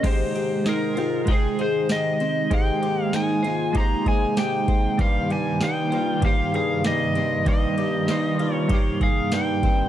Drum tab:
CC |x-------|--------|--------|--------|
RD |xxxxxxxx|xxxxxxxx|xxxxxxxx|xxxxxxxx|
TB |--x---x-|--x---x-|--x---x-|--x---x-|
SD |--o---o-|--o---o-|--o---o-|--o---o-|
BD |o---o---|o---oo-o|o---o---|o---oo-o|